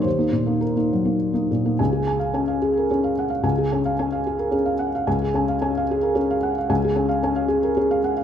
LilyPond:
\new Staff \with { instrumentName = "Felt piano" } { \time 3/4 \key des \major \tempo 4 = 110 << { c''4 bes'4. r8 | aes''16 aes'16 aes''16 f''16 aes''16 f''16 aes'16 bes'16 aes'16 f''16 ges''16 f''16 | aes''16 aes'16 aes''16 f''16 aes''16 f''16 aes'16 bes'16 aes'16 f''16 ges''16 f''16 | aes''16 aes'16 aes''16 f''16 aes''16 f''16 aes'16 bes'16 aes'16 f''16 ges''16 f''16 |
aes''16 aes'16 aes''16 f''16 aes''16 f''16 aes'16 bes'16 aes'16 f''16 ges''16 f''16 | } \\ { ees,16 <bes ees'>16 bes,16 <bes ees'>8 <bes ees'>16 ges16 <bes ees'>8 <bes ees'>16 bes,16 <bes ees'>16 | des,4 des'8 r8 des'8 r8 | des,8 des'8 des'8 r8 des'8 r8 | des,8 des'8 des'8 r8 des'8 r8 |
des,8 des'8 des'8 r8 des'8 r8 | } >> }